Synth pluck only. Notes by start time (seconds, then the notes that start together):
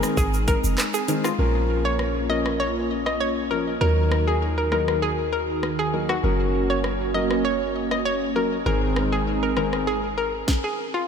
0.17 G#4
0.48 A#4
0.94 G#4
1.24 F4
1.85 C#5
2.30 D#5
2.60 C#5
3.06 D#5
3.21 C#5
3.51 A#4
3.81 A#4
4.28 G#4
4.58 A#4
4.72 A#4
5.02 G#4
5.33 A#4
5.79 G#4
6.09 F#4
6.70 C#5
7.14 D#5
7.45 C#5
7.91 D#5
8.05 C#5
8.36 A#4
8.66 A#4
9.13 G#4
9.43 A#4
9.57 A#4
9.87 G#4
10.18 A#4
10.64 G#4
10.94 F4